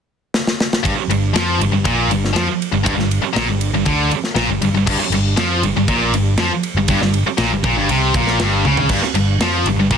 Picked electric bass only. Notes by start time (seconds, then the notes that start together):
0.84 G1
0.96 muted picked electric bass stroke
1.08 G1
1.33 F2
1.59 G1
1.72 G1
1.84 A#1
2.08 G1
2.35 F2
2.72 G1
2.97 G1
3.22 muted picked electric bass stroke
3.36 A#1
3.47 G1
3.73 G1
3.86 D2
4.12 muted picked electric bass stroke
4.35 A#1
4.48 G1
4.61 G1
4.72 G1
4.86 G1
5.10 G1
5.37 F2
5.62 G1
5.75 G1
5.88 A#1
6.12 G1
6.36 F2
6.75 G1
6.88 G1
7.01 G1
7.25 muted picked electric bass stroke
7.38 A#1
7.52 G1
7.63 A#1
7.76 G1
7.89 C2
8.14 A#1
8.39 G1
8.65 C#2
8.89 G1
9.03 muted picked electric bass stroke
9.14 G1
9.39 F2
9.64 G1
9.76 G1
9.90 A#1